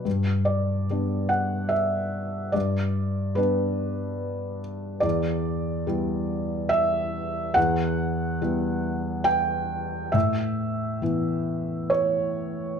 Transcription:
<<
  \new Staff \with { instrumentName = "Felt piano" } { \time 3/4 \key e \dorian \tempo 4 = 71 r8 d''4 fis''8 e''4 | d''4 b'4. r8 | d''2 e''4 | fis''2 g''4 |
e''2 cis''4 | }
  \new Staff \with { instrumentName = "Felt piano" } { \time 3/4 \key e \dorian g,4 <g b d'>2 | g,4 <g b d'>2 | e,4 <g b e'>2 | e,4 <g b e'>2 |
a,4 <e b e'>2 | }
>>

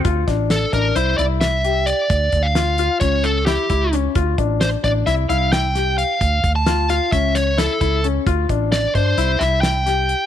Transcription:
<<
  \new Staff \with { instrumentName = "Lead electric guitar" } { \time 9/8 \key d \minor \tempo 4. = 88 r4 a'8 bes'8 c''8 d''8 e''4 d''8~ | d''8. f''4~ f''16 cis''8 a'8 g'4 r8 | r4 c''8 d''8 e''8 f''8 g''4 f''8~ | f''8. a''8. f''8 e''8 cis''8 a'4 r8 |
r4 d''8 c''4 e''8 g''4. | }
  \new Staff \with { instrumentName = "Grand piano" } { \time 9/8 \key d \minor f'8 d'4 d'8 e'8 e'4 g'4 | r4 f'8 f'8 cis'4 e'8 e'8 cis'8 | f'8 d'4 d'8 e'8 e'4 g'4 | r4 f'8 f'8 cis'4 e'8 e'8 cis'8 |
f'8 d'4 d'8 e'8 e'4 g'4 | }
  \new Staff \with { instrumentName = "Fretless electric bass" } { \clef bass \time 9/8 \key d \minor d,8 a,,4 a,,8 c,8 c,2 | d,8 d,4. cis,4. cis,4 | d,8 a,,4 a,,8 c,8 c,2 | d,8 d,4. cis,4. cis,4 |
d,8 a,,4 g,8 c,8 c,2 | }
  \new DrumStaff \with { instrumentName = "Drums" } \drummode { \time 9/8 <hh bd>8 <hh bd sn>8 <hh sn>8 <hh bd>8 hh8 hh8 <hh sn>8 hh8 hh8 | <hh bd>8 <hh bd>8 <hh sn>8 hh8 <hh bd>8 hh8 <hh sn>8 <hh bd>8 hh8 | <hh bd>8 <hh bd>8 <hh sn>8 <hh bd>8 <hh sn>8 hh8 <hh sn>8 <hh sn>8 hh8 | <hh bd>8 <hh bd>8 <hh sn>8 <hh sn>8 <hh bd>8 <hh sn>8 <hh sn>8 <hh bd>8 hh8 |
<hh bd>8 <hh bd>8 <hh sn>8 <hh bd>8 hh8 <hh sn>8 <hh sn>8 <hh sn>8 hh8 | }
>>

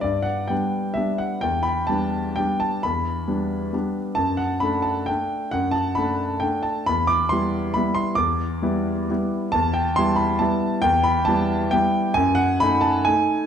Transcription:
<<
  \new Staff \with { instrumentName = "Grand piano" } { \time 3/4 \key e \minor \tempo 4 = 134 d''8 fis''8 g''4 e''8 fis''8 | g''8 b''8 a''4 g''8 a''8 | b''2~ b''8 r8 | a''8 fis''8 b''8 a''8 g''4 |
fis''8 a''8 b''4 g''8 a''8 | b''8 d'''8 c'''4 b''8 c'''8 | d'''2~ d'''8 r8 | a''8 g''8 c'''8 b''8 a''4 |
g''8 b''8 a''4 g''4 | gis''8 fis''8 b''8 a''8 gis''4 | }
  \new Staff \with { instrumentName = "Grand piano" } { \time 3/4 \key e \minor g,4 <g b d'>4 <g b d'>4 | e,4 <g b d'>4 <g b d'>4 | e,4 <g b d'>4 <g b d'>4 | fis,4 <a d'>4 <a d'>4 |
fis,4 <a d'>4 <a d'>4 | e,4 <g b e'>4 <g b e'>4 | e,4 <g b e'>4 <g b e'>4 | e,4 <g b e'>4 <g b e'>4 |
e,4 <g b e'>4 <g b e'>4 | fis,4 <a dis'>4 <a dis'>4 | }
>>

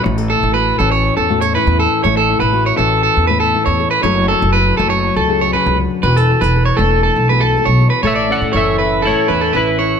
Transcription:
<<
  \new Staff \with { instrumentName = "Clean electric guitar" } { \time 4/4 \key a \major \tempo 4 = 120 r8 a'8 b'8 a'16 cis''8 a'8 cis''16 b'8 a'8 | cis''16 a'8 b'8 cis''16 a'8 a'8 b'16 a'8 cis''8 b'16 | cis''8 a'8 b'8 a'16 cis''8 a'8 cis''16 b'8 r8 | b'16 a'8 b'8 cis''16 a'8 a'8 b'16 a'8 cis''8 b'16 |
cis''16 d''8 r16 cis''8 b'8 a'8 b'16 a'16 b'8 cis''8 | }
  \new Staff \with { instrumentName = "Clean electric guitar" } { \time 4/4 \key a \major r1 | r1 | r1 | r1 |
<a' e''>8 <a' fis''>8 <a' e''>4 <e' cis''>4 <e' b'>4 | }
  \new Staff \with { instrumentName = "Nylon-string guitar" } { \time 4/4 \key a \major << { <a fis'>16 a'16 e'8 fis'8 cis'4 fis'16 a'16 e'8 a'8 | a'8 e'8 fis'8 cis'4 a'8 e'8 a'8 | <fis a e' a'>8 e'8 a'8 a4 gis'4. | fis'16 a'16 fis'16 a'16 a'8 d'4 a'8 a'8 a'8 |
a'8 cis'4 cis'4. cis'8 e'8 | } \\ { a,4. e4 a,4. | a,4. e4 a,4. | fis,4. fis4 cis8 cis8 d8 | e4. a4 b,4. |
a,4 e4 a,8 e4. | } >> }
  \new Staff \with { instrumentName = "Upright bass" } { \clef bass \time 4/4 \key a \major a,,8. a,,8. a,,8. e,4 e,8 r16 | a,,8. a,,8. a,,8. e,4 e,8 r16 | fis,,8. fis,,8. fis,,8. cis,4 cis,8 r16 | e,,8. e,,8. e,,8. b,,4 b,,8 r16 |
a,,8. a,16 fis,,4. e,8 a,,4 | }
>>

